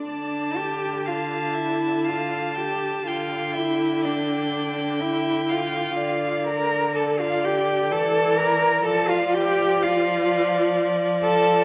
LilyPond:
<<
  \new Staff \with { instrumentName = "Violin" } { \time 3/4 \key d \minor \tempo 4 = 62 d''8 g''8 f''8 e''8 f''8 g''8 | f''8 e''8 d''4 e''8 f''8~ | f''8 bes''8 a''16 f''16 g''8 a''8 bes''8 | a''16 f''16 g''8 f''4 r8 a''8 | }
  \new Staff \with { instrumentName = "Violin" } { \time 3/4 \key d \minor a''4 a''4 a''4 | g''4 g''2 | d''4 d''4 d''4 | d''4 d''2 | }
  \new Staff \with { instrumentName = "Cello" } { \time 3/4 \key d \minor d'8 g'8 f'8 e'8 f'8 g'8 | f'8 e'8 d'4 e'8 f'8~ | f'8 bes'8 a'16 f'16 g'8 a'8 bes'8 | a'16 f'16 g'8 f'4 r8 a'8 | }
  \new Staff \with { instrumentName = "Viola" } { \clef bass \time 3/4 \key d \minor d2. | d2. | d2 e4 | f2. | }
>>